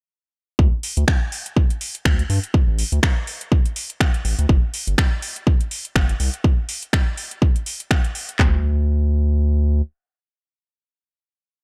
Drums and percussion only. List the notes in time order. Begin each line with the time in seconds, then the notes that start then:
0.59 kick
0.83 open hi-hat
0.97 closed hi-hat
1.08 finger snap, kick
1.32 open hi-hat
1.46 closed hi-hat
1.56 kick
1.70 closed hi-hat
1.81 open hi-hat
1.95 closed hi-hat
2.05 finger snap, kick
2.19 closed hi-hat
2.30 open hi-hat
2.44 closed hi-hat
2.54 kick
2.79 open hi-hat
2.92 closed hi-hat
3.03 finger snap, kick
3.27 open hi-hat
3.41 closed hi-hat
3.52 kick
3.66 closed hi-hat
3.76 open hi-hat
3.90 closed hi-hat
4.00 finger snap, kick
4.14 closed hi-hat
4.25 open hi-hat
4.39 closed hi-hat
4.49 kick
4.74 open hi-hat
4.87 closed hi-hat
4.98 finger snap, kick
5.22 open hi-hat
5.36 closed hi-hat
5.47 kick
5.61 closed hi-hat
5.71 open hi-hat
5.85 closed hi-hat
5.96 finger snap, kick
6.09 closed hi-hat
6.20 open hi-hat
6.34 closed hi-hat
6.44 kick
6.69 open hi-hat
6.82 closed hi-hat
6.93 finger snap, kick
7.17 open hi-hat
7.31 closed hi-hat
7.42 kick
7.56 closed hi-hat
7.66 open hi-hat
7.80 closed hi-hat
7.91 finger snap, kick
8.04 closed hi-hat
8.15 open hi-hat
8.29 closed hi-hat
8.39 kick, clap, floor tom